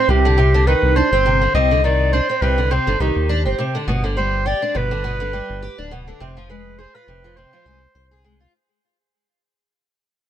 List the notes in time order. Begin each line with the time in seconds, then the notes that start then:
Already playing: C5
0.08 C2 C3 G4
0.25 D3
0.38 C3
0.54 D3
0.67 D#3 B4
0.83 C2
0.96 D4 C5
1.12 G1 C4
1.26 C3
1.42 D3
1.54 C2 C3 D#5
1.71 D3
1.84 D#3 D5
2.13 D4 C5
2.29 C4
2.42 C2 C3 B4
2.58 D3
2.71 C3 C5
2.87 G1 D3
3.00 C2 D#3 G4
3.16 D#2
3.29 D4
3.46 G1 C4
3.58 C3
3.75 D3
3.87 G1 B2
4.04 D3
4.17 G3 C5
4.46 G4 D5
4.62 D4
4.75 G1 B2 B4
4.91 D3
5.04 B2
5.20 D3
5.33 G3
5.50 G1
5.62 G4
5.78 D1 D4
5.91 B2
6.08 D3
6.20 F1 C3
6.37 F3
6.50 G#3 B4
6.79 G#4 C5
6.95 F4 B4
7.08 F1 C3
7.24 F3
7.37 C3 C5
7.53 F3
7.66 C2 G#3
7.95 C2 C5
8.11 G#4
8.24 G#3
8.40 F4